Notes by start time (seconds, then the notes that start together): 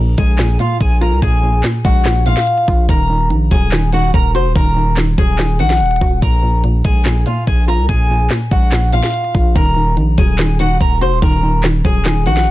Already playing: A#1 A#2
0.18 A#1 G#3 G#4 G#5, kick, closed hi-hat
0.38 A#2, snare, clap, closed hi-hat
0.59 A#2 F4 F5, closed hi-hat
0.81 A#1 G#4 G#5, kick, closed hi-hat
1.01 F4 A#4 A#5, closed hi-hat
1.12 C2
1.22 A#1 A#2 G#4 G#5, kick, closed hi-hat
1.43 A#2
1.63 A#2, snare, clap, closed hi-hat
1.85 A#1 G#3 F#4 F#5, kick
2.05 A#2, snare, clap, closed hi-hat
2.26 A#2 F4 F5, closed hi-hat
2.37 snare
2.47 closed hi-hat
2.58 closed hi-hat
2.68 A#1 F4, kick, open hi-hat
2.89 D#1 D#3 A#4 A#5, kick, closed hi-hat
3.10 D#3
3.30 A#1 D#3, closed hi-hat
3.51 D#1 F#3 G#4 G#5, kick, closed hi-hat
3.72 D#3, snare, clap, closed hi-hat
3.93 D#3 F#4 F#5, closed hi-hat
4.14 D#1 A#4 A#5, kick, closed hi-hat
4.35 F1 F#4 C5 C6, closed hi-hat
4.45 D#1
4.56 D#1 D#3 A#4 A#5, kick, closed hi-hat
4.77 D#3
4.97 D#3, snare, clap, closed hi-hat
5.18 D#1 F#3 G#4 G#5, kick
5.38 D#3, snare, clap, closed hi-hat
5.59 A#1 D#3 F#4 F#5, closed hi-hat
5.70 snare
5.81 D#1, closed hi-hat
5.86 closed hi-hat
5.91 closed hi-hat
5.96 closed hi-hat
6.01 D#1 F#4, kick, open hi-hat
6.22 A#1 A#2 A#4 A#5, kick, closed hi-hat
6.43 A#2
6.64 A#2, closed hi-hat
6.84 A#1 G#3 G#4 G#5, kick, closed hi-hat
7.05 A#2, snare, clap, closed hi-hat
7.26 A#2 F4 F5, closed hi-hat
7.47 A#1 G#4 G#5, kick, closed hi-hat
7.68 F4 A#4 A#5, closed hi-hat
7.78 C2
7.89 A#1 A#2 G#4 G#5, kick, closed hi-hat
8.10 A#2
8.30 A#2, snare, clap, closed hi-hat
8.51 A#1 G#3 F#4 F#5, kick
8.72 A#2, snare, clap, closed hi-hat
8.93 A#2 F4 F5, closed hi-hat
9.03 snare
9.14 closed hi-hat
9.24 closed hi-hat
9.35 A#1 F4, kick, open hi-hat
9.55 D#1 D#3 A#4 A#5, kick, closed hi-hat
9.76 D#3
9.97 A#1 D#3, closed hi-hat
10.18 D#1 F#3 G#4 G#5, kick, closed hi-hat
10.38 D#3, snare, clap, closed hi-hat
10.59 D#3 F#4 F#5, closed hi-hat
10.81 D#1 A#4 A#5, kick, closed hi-hat
11.01 F1 F#4 C5 C6, closed hi-hat
11.12 D#1
11.22 D#1 D#3 A#4 A#5, kick, closed hi-hat
11.43 D#3
11.63 D#3, snare, clap, closed hi-hat
11.85 D#1 F#3 G#4 G#5, kick
12.05 D#3, snare, clap, closed hi-hat
12.26 A#1 D#3 F#4 F#5, closed hi-hat
12.37 snare
12.47 D#1, closed hi-hat